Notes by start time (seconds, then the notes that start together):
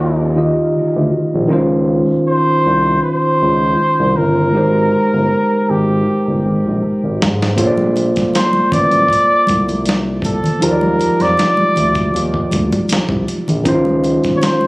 Already playing: D#2 D#3 D#4 F4 G4 D5
0.36 D#3 D#4 F4 G4 D#5
0.76 D2
0.96 D2
1.34 A#1
1.48 C#2 D#3 C#4 D#4 F4
1.53 C5
2.10 C2
2.28 C5
2.66 C2
3.03 C5
3.42 C#2
4.00 C2
4.17 G1 A#4
4.52 G#1 G#3 D#4 G4 A#4
4.57 C5
4.94 G1
5.14 G1
5.70 G#1 G4
6.28 G1
6.45 G#1
6.66 A#1
6.83 G#1
7.04 G#1
7.22 G#2, snare
7.42 snare
7.56 A#1 A#3 F4 A4 C5, kick, closed hi-hat
7.61 C#5
7.67 D5
7.77 high conga
7.96 closed hi-hat, muted conga
8.16 A1, kick, snare, closed hi-hat, high conga
8.34 C5, snare, closed hi-hat, muted conga
8.53 high conga
8.72 A1 D5, kick, closed hi-hat, low conga
8.91 closed hi-hat, high conga
9.09 kick, muted conga
9.13 closed hi-hat
9.47 C2, kick, closed hi-hat, muted conga, high conga
9.69 closed hi-hat, high conga
9.86 snare, closed hi-hat
10.22 A4, kick, closed hi-hat, muted conga
10.44 closed hi-hat, low conga
10.60 D#2 F3 D#4 F4 G4 A#4, closed hi-hat
10.65 C5
10.71 D5
10.81 high conga
10.99 F2, closed hi-hat, muted conga
11.20 F2 D5, snare, closed hi-hat, high conga
11.37 snare, closed hi-hat, muted conga
11.57 high conga
11.76 D2, closed hi-hat, low conga
11.95 kick, closed hi-hat, high conga
12.14 D#2, closed hi-hat, muted conga
12.34 kick
12.51 D2, kick, closed hi-hat, high conga
12.72 kick, closed hi-hat, high conga
12.89 C2, snare, closed hi-hat, muted conga
13.09 C2, kick
13.28 closed hi-hat, muted conga
13.48 A#1, closed hi-hat, low conga
13.64 C#2 D#3 C#4 D#4 E4, kick, closed hi-hat, muted conga
13.68 C5
13.74 F4
13.85 high conga
14.04 closed hi-hat, muted conga
14.24 C2, kick, snare, closed hi-hat, high conga
14.37 C#5
14.41 C5, snare, closed hi-hat, muted conga
14.61 high conga